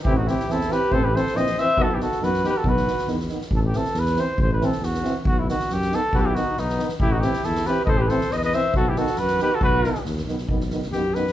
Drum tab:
SD |--ooooo-|--ooooo-|--ooooo-|-ooooooo|
BD |o-------|o-------|o-------|o-------|

SD |--ooooo-|--ooooo-|--ooooo-|--o-oooo|
BD |o-------|o-------|o-------|o-------|

SD |--ooooo-|--ooooo-|--ooooo-|--oooooo|
BD |o-------|o-------|o-------|o-------|

SD |-oooo-oo|
BD |o-------|